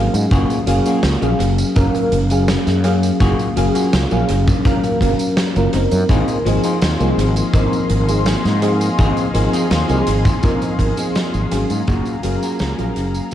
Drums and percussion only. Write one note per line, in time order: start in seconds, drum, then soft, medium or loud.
0.14 closed hi-hat medium
0.14 tambourine medium
0.31 kick loud
0.31 closed hi-hat medium
0.31 tambourine soft
0.50 closed hi-hat soft
0.50 tambourine soft
0.67 closed hi-hat loud
0.86 closed hi-hat medium
0.86 tambourine medium
1.03 snare loud
1.03 closed hi-hat medium
1.03 tambourine soft
1.22 closed hi-hat soft
1.22 tambourine soft
1.40 closed hi-hat medium
1.58 closed hi-hat medium
1.58 tambourine medium
1.76 kick loud
1.76 closed hi-hat medium
1.76 tambourine soft
1.94 closed hi-hat soft
1.94 tambourine soft
2.12 closed hi-hat loud
2.30 closed hi-hat medium
2.30 tambourine medium
2.48 snare loud
2.48 closed hi-hat medium
2.48 tambourine soft
2.67 snare soft
2.67 closed hi-hat soft
2.67 tambourine soft
2.84 closed hi-hat medium
3.03 closed hi-hat medium
3.03 tambourine medium
3.20 kick loud
3.20 closed hi-hat medium
3.20 tambourine soft
3.39 closed hi-hat soft
3.39 tambourine soft
3.57 closed hi-hat loud
3.75 closed hi-hat medium
3.75 tambourine medium
3.93 snare loud
3.93 closed hi-hat medium
3.93 tambourine soft
4.11 closed hi-hat soft
4.11 tambourine soft
4.29 closed hi-hat loud
4.47 kick loud
4.47 closed hi-hat medium
4.47 tambourine medium
4.65 kick loud
4.65 closed hi-hat medium
4.65 tambourine soft
4.83 closed hi-hat soft
4.83 tambourine soft
5.01 kick medium
5.01 closed hi-hat loud
5.19 closed hi-hat medium
5.19 tambourine medium
5.37 snare loud
5.37 closed hi-hat medium
5.37 tambourine soft
5.56 closed hi-hat soft
5.56 tambourine soft
5.73 closed hi-hat medium
5.91 closed hi-hat medium
5.91 tambourine soft
6.09 kick loud
6.09 closed hi-hat medium
6.09 tambourine soft
6.28 closed hi-hat soft
6.28 tambourine soft
6.46 closed hi-hat medium
6.63 closed hi-hat medium
6.63 tambourine soft
6.82 snare loud
6.82 closed hi-hat medium
6.82 tambourine soft
7.00 closed hi-hat soft
7.00 tambourine soft
7.19 closed hi-hat loud
7.36 closed hi-hat medium
7.36 tambourine medium
7.54 kick loud
7.54 closed hi-hat medium
7.54 tambourine soft
7.73 closed hi-hat soft
7.73 tambourine soft
7.90 closed hi-hat medium
8.09 closed hi-hat medium
8.09 tambourine medium
8.26 snare loud
8.26 closed hi-hat medium
8.26 tambourine soft
8.45 snare soft
8.45 closed hi-hat soft
8.45 tambourine soft
8.62 closed hi-hat medium
8.81 closed hi-hat medium
8.81 tambourine medium
8.99 kick loud
8.99 closed hi-hat medium
8.99 tambourine soft
9.17 closed hi-hat soft
9.17 tambourine soft
9.35 closed hi-hat medium
9.54 closed hi-hat medium
9.54 tambourine medium
9.71 snare loud
9.71 closed hi-hat medium
9.71 tambourine soft
9.89 closed hi-hat soft
9.89 tambourine soft
10.07 closed hi-hat loud
10.25 kick loud
10.25 closed hi-hat medium
10.25 tambourine medium
10.43 kick loud
10.43 closed hi-hat medium
10.43 tambourine soft
10.62 closed hi-hat soft
10.62 tambourine soft
10.79 kick medium
10.79 closed hi-hat medium
10.97 closed hi-hat medium
10.97 tambourine medium
11.15 snare loud
11.15 closed hi-hat medium
11.15 tambourine soft
11.34 closed hi-hat soft
11.34 tambourine soft
11.52 closed hi-hat loud
11.70 closed hi-hat medium
11.70 tambourine medium
11.88 kick loud
11.88 closed hi-hat medium
11.88 tambourine soft
12.06 closed hi-hat soft
12.06 tambourine soft
12.23 closed hi-hat loud
12.43 closed hi-hat medium
12.43 tambourine medium
12.59 snare loud
12.59 closed hi-hat medium
12.59 tambourine soft
12.79 closed hi-hat soft
12.79 tambourine soft
12.96 closed hi-hat medium
13.14 closed hi-hat medium
13.14 tambourine medium